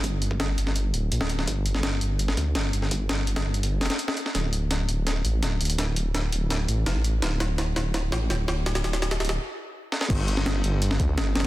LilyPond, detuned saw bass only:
\new Staff \with { instrumentName = "Detuned saw bass" } { \clef bass \time 4/4 \key d \minor \tempo 4 = 167 g,,4. g,,4 d,,8 bes,,16 d,,8. | g,,4. g,,4 d,8 g,,8 g,,8~ | g,,4. g,,8 g,,8 f,,16 r4 r16 | d,,4. d,,4 a,,8 d,,8 d,,8~ |
d,,4. d,,4 a,,8 f,,16 a,,8. | d,,4. d,,4 a,,8 d,,8 d,,8~ | d,,4. d,,8 r2 | g,,4. g,,4 d,8 g,,8 g,,8 | }